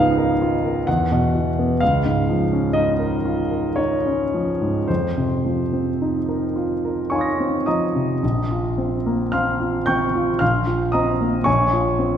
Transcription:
grand piano
Already playing: C#2 G#2 F3 B3 D#4 F5 G#5
0.18 A#4
0.42 F4
0.65 A#4
0.87 E2 F#5
1.12 B2
1.35 E3
1.59 B3
1.80 C#2 F5
2.06 G#2
2.29 F3
2.53 C#4
2.73 D#4 D#5
2.99 A#4
3.26 F4
3.51 A#4
3.76 D#4 C#5
4.05 C#4
4.34 F3
4.62 G#2
4.88 F2 C5
5.17 C3
5.45 F3
5.73 C4
6.01 D#4
6.29 A#4
6.56 F4
6.85 A#4
7.10 D#4 C#5 F5 G#5 C#6
7.15 C6 D#6
7.21 A#6
7.40 C4
7.66 F3 D#5 A#5 D#6
7.95 C3
8.23 A#1
8.51 F4
8.78 C4
9.06 A#3
9.32 C4 F5 C6 F6
9.60 F4
9.86 C4 G5 C#6 G6
10.15 F4
10.39 A#1 F5 C6 F6
10.67 F4
10.92 C4 D#5 A#5 D#6
11.21 A#3
11.44 A#1 C#5 G#5 C#6
11.73 F4
11.99 C4

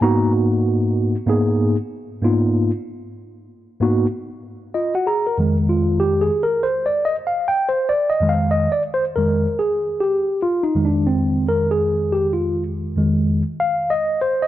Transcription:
tine electric piano
0.01 G#2 A#3 B3 D#4 F#4 A#5
1.26 G#2 A#3 B3 D#4 G#4
2.22 G#2 A#3 B3 D#4 F4
3.80 G#2 A#3 B3 D#4 F#4
4.74 F4 D#5
4.94 F#4 F#5
5.06 G#4 A#5
5.27 A#4
5.38 F2 D#3 G#3
5.69 F4
6.00 G4
6.21 G#4
6.43 A#4
6.63 C5
6.86 D5
7.05 D#5
7.27 F5
7.48 G5
7.69 C5
7.89 D5
8.10 D#5
8.20 F2 D#3 G#3
8.29 F5
8.51 D#5
8.72 D5
8.94 C5
9.16 F2 D#3 G#3 A#4
9.59 G#4
10.00 G4
10.42 F4
10.63 D#4
10.75 F2 D#3 G#3
10.85 D4
11.07 C4
11.49 A#4
11.71 G#4
12.12 G4
12.33 F4
12.96 F2 D#3 G#3
13.60 F5
13.90 D#5
14.21 C5
14.42 D#5

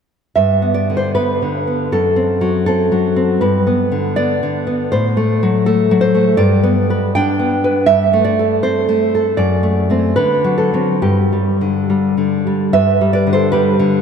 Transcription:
nylon-string guitar
0.35 G2 E5
0.62 B3
0.74 D5
0.90 D3
0.97 C5
1.15 B3 B4
1.42 D3
1.67 B3
1.92 F#2 A4
2.16 C4
2.41 F#3
2.66 C4 A4
2.92 F#3
3.16 C4
3.41 G2 B4
3.67 B3
3.92 D3
4.16 B3 D5
4.43 D3
4.67 B3
4.92 A2 C5
5.17 A3
5.43 F#3
5.66 A3 A4
5.91 F#3
6.01 C5
6.15 A3
6.37 G2 D5
6.63 B3
6.90 B4
7.15 D4 G5
7.39 B3
7.64 B4
7.86 G2 E5
8.13 A3
8.25 D5
8.39 A4
8.63 C4 C5
8.89 A3
9.15 A4
9.37 F#2 D5
9.63 A3
9.90 A3 C4
10.16 D3 B4
10.44 F#3
10.58 A4
10.74 F#3 C4
11.02 G2 G4
11.33 G3
11.61 D3
11.90 G3
12.17 D3
12.47 G3
12.73 G2 B4 E5
13.01 G3
13.13 B4 D5
13.27 D3
13.33 A4 C5
13.52 G3 G4 B4
13.79 D3

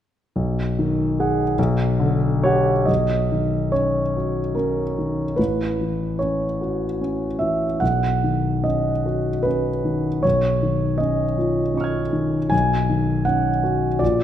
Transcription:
grand piano
0.36 B1
0.79 D#3
1.20 G#4 F#5
1.59 B1
2.00 D3
2.44 G4 C#5 F#5
2.86 B1 D#5
3.32 D#3
3.72 C#4 C#5
4.17 F#4
4.55 C#4 A#4
4.98 D#3
5.36 A1 B4
5.81 E3
6.19 C#4 C#5
6.61 F#4
7.01 C#4
7.39 E3 E5
7.80 B1 F#5
8.24 D#3
8.64 C#4 D#5
9.06 F#4
9.43 C#4 B4
9.85 D#3
10.23 B1 C#5
10.63 D#3
10.98 C#4 D#5
11.38 F4
11.74 C#4 D#5 C#6
11.81 F6 G#6
12.13 D#3
12.50 B1 G#5
12.90 D#3
13.25 C#4 F#5
13.63 F#4
13.99 A#1 D5

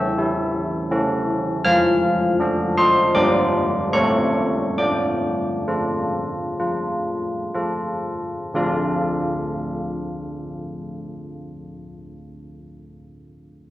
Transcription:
church bells
Already playing: C#4 A4 E5 E6
0.18 E4
0.91 C#4 A4
1.65 F3 F5 F6
2.40 D4 A4
2.77 C5 C6
3.15 G3 D4 A#4 D5 D6
3.93 A3 G4 A4 C#5 C#6
4.78 D4 D5 D6
5.68 F4 A4
6.60 F4
7.55 F4 A4
8.54 D3 A3 F4 A4 D5 F5

